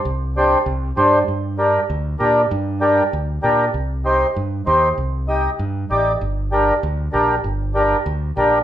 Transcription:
X:1
M:4/4
L:1/8
Q:1/4=195
K:Gm
V:1 name="Accordion"
z2 [DGc] z3 [DGc] z | z2 [DGB] z3 [DGB] z | z2 [DGB] z3 [DGB] z | z2 [EGc] z3 [EGc] z |
z2 [EGe] z3 [EGd] z | z2 [DGB] z3 [DGB] z | z2 [DGB] z3 [DGB] z |]
V:2 name="Fingered electric bass" clef=bass
C,,4 C,,2 G,,2 | G,,4 D,,2 B,,2 | G,,4 D,,2 B,,2 | C,,4 G,,2 E,,2 |
C,,4 G,,2 A,,,2 | G,,,4 D,,2 B,,,2 | G,,,4 D,,2 B,,,2 |]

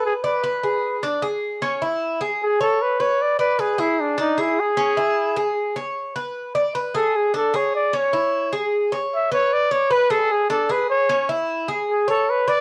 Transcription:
X:1
M:4/4
L:1/8
Q:1/4=152
K:C#phr
V:1 name="Trumpet"
G B4 z3 | z4 G A B c | d B G E D ^D E G- | G4 z4 |
z3 A G A c d | c3 z3 e c | d c B A G A B c- | c z3 G A B d |]
V:2 name="Cuban tres"
B d B G2 D G2 | C E2 G2 c2 B- | B d B G2 D G2 | C E2 G2 c2 B- |
B d B G2 D G2 | C E2 G2 c2 B- | B d B G2 D G2 | C E2 G2 c2 B |]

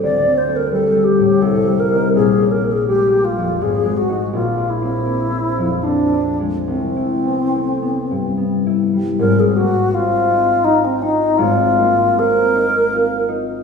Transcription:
X:1
M:3/4
L:1/16
Q:1/4=81
K:Cmix
V:1 name="Alto flute"
d2 c B A2 G2 A2 B2 | _A2 B A G2 F2 A2 ^F2 | F2 E6 D3 z | C8- C2 z2 |
[K:Ab] B A _G2 F4 E C E2 | F4 B6 z2 |]
V:2 name="Harp"
(3[D,,A,CD]2 C2 A,2 (3G,2 A,2 A,,2 (3C,,2 G,2 [C_E]2 | (3B,,,2 _D2 B,2 (3_A,2 B,2 F,,2 (3_A,,,2 A,2 [_E^F]2 | (3B,,,2 D2 C2 (3B,2 C2 F,,2 (3C2 D2 _A,2 | (3C,,2 E2 =B,2 (3A,2 B,2 G,,2 (3B,2 E2 G,2 |
[K:Ab] [A,,,A,,]2 B,2 C2 E2 F2 E2 | [A,,,A,,]2 B,2 C2 E2 F2 E2 |]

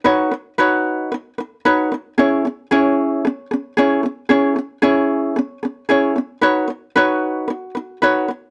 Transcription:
X:1
M:4/4
L:1/8
Q:1/4=113
K:B
V:1 name="Ukulele"
[DFBc] [DB] [DFBc]2 [DB] [DB] [DFBc] [DB] | [CEGc] [CG] [CEGc]2 [CG] [CG] [CEGc] [CG] | [CEGc] [CG] [CEGc]2 [CG] [CG] [CEGc] [CG] | [DFBc] [DB] [DFBc]2 [DB] [DB] [DFBc] [DB] |]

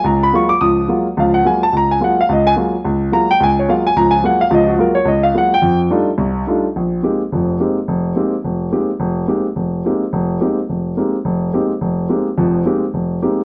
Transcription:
X:1
M:4/4
L:1/8
Q:"Swing" 1/4=214
K:F#
V:1 name="Grand piano"
a b c' =d' ^d'2 z2 | e f g =a ^a g f e | d g z4 a =g | g c e g a g f e |
d F A c d e f =g- | =g z6 z | [K:Cm] z8 | z8 |
z8 | z8 | z8 | z8 |]
V:2 name="Grand piano"
C,,2 [F,G,A,E] z [C,,E,]2 [F,G,A,E] z | [C,,E,]2 [F,G,A,E] z C,,2 [F,G,A,E] z | C,,2 [F,G,A,E] z C,,2 [F,G,A,E] z | C,,2 [F,G,A,E] z [C,,E,]2 [F,G,A,E] z |
[C,,E,]2 [F,G,A,E] z C,,2 [F,G,A,E] z | =F,,2 [=G,=A,=D_E=F] z =C,,2 [G,A,DEF] z | [K:Cm] B,,,2 [A,B,CEG] z [F,,,F,,]2 [A,B,CEG] z | F,,,2 [A,B,CEG] z F,,,2 [A,B,CEG] z |
F,,,2 [A,B,CEG] z F,,,2 [A,B,CEG] z | F,,,2 [A,B,CEG] z F,,,2 [A,B,CEG] z | F,,,2 [A,B,CEG] z F,,,2 [A,B,CEG] z | [F,,,F,,]2 [A,B,CEG] z F,,,2 [A,B,CEG] z |]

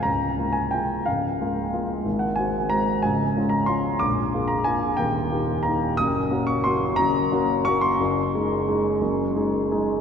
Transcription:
X:1
M:3/4
L:1/8
Q:1/4=180
K:Bbdor
V:1 name="Grand piano"
b3 a g2 | f4- f z | z _g a2 b2 | a3 b c'2 |
=d'3 b a2 | g4 b2 | [K:Ebdor] e'3 d' c'2 | b4 d' c'- |
c'6- | c'3 z3 |]
V:2 name="Grand piano"
[D,,,D,,]2 [A,B,F]2 [A,B,F]2 | [D,,,D,,]2 [A,B,F]2 [A,B,F]2 | [A,,,A,,]2 [A,C_G]2 [A,CG]2 | [D,,,D,,]2 [A,DF]2 [A,DF]2 |
[B,,,,B,,,]2 [B,FA]2 [B,FA]2 | [E,,,E,,]2 [B,EG]2 [B,EG]2 | [K:Ebdor] [G,,,G,,]2 [B,DG]2 [B,DG]2 | [G,,,G,,]2 [B,DG]2 [B,DG]2 |
[G,,,G,,]2 [A,EA]2 [A,EA]2 | [G,,,G,,]2 [A,EA]2 [A,EA]2 |]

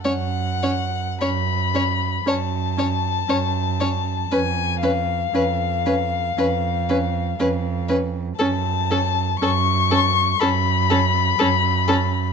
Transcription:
X:1
M:4/4
L:1/8
Q:1/4=59
K:F#m
V:1 name="Violin"
f2 b2 a4 | g ^e6 z | a2 c'2 b4 |]
V:2 name="Violin"
c c c c c c c c | B B B B B B B B | A A A A A A A A |]
V:3 name="Viola"
C C C C C C C C | C C C C C C C C | C C C C C C C C |]
V:4 name="Cello" clef=bass
F,,2 F,,2 F,,2 F,,2 | ^E,,2 E,,2 E,,2 E,,2 | F,,2 F,,2 F,,2 F,,2 |]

